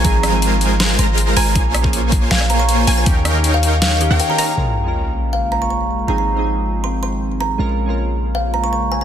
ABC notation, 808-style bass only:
X:1
M:4/4
L:1/16
Q:1/4=159
K:Bbdor
V:1 name="808-style bass" clef=bass
A,,,8- A,,,2 A,,,4 A,,,2 | B,,,8 B,,,6 B,,,2 | E,,8- E,,3 E,, z4 | B,,,16 |
A,,,16 | B,,,16 |]